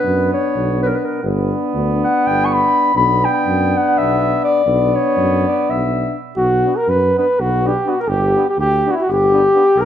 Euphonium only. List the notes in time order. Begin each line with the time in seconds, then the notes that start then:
Already playing: D4
1.24 D4
2.96 D4
4.66 D4
6.64 D4
7.18 D4
7.65 D4
7.85 D4
8.36 D4
8.86 D4
9.33 D4
9.54 D4